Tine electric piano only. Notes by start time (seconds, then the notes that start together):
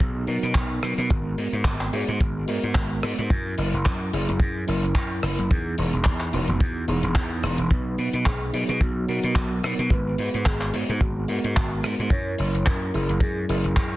Already playing: F#3 B3 D#4 G#4
0.26 F#3 B3 D#4 A#4
1.09 G#3 B3 F#4 A#4
1.92 G#3 B3 F#4 G#4
2.46 G#3 B3 F#4 A#4
3.29 F#3 C#4 E4 A#4
4.13 F#3 C#4 E4 G#4
4.67 F#3 C#4 E4 A#4
5.49 E3 B3 D#4 G#4
6.32 E3 B3 D#4 F#4
6.87 E3 B3 D#4 G#4
7.70 F#3 B3 D#4 B4
8.53 F#3 B3 D#4 G#4
9.07 F#3 B3 D#4 A#4
9.90 G#3 B3 F#4 B4
10.73 G#3 B3 F#4 G#4
11.28 G#3 B3 F#4 A#4
12.10 F#3 C#4 E4 A#4
12.93 F#3 C#4 E4 G#4
13.48 F#3 C#4 E4 A#4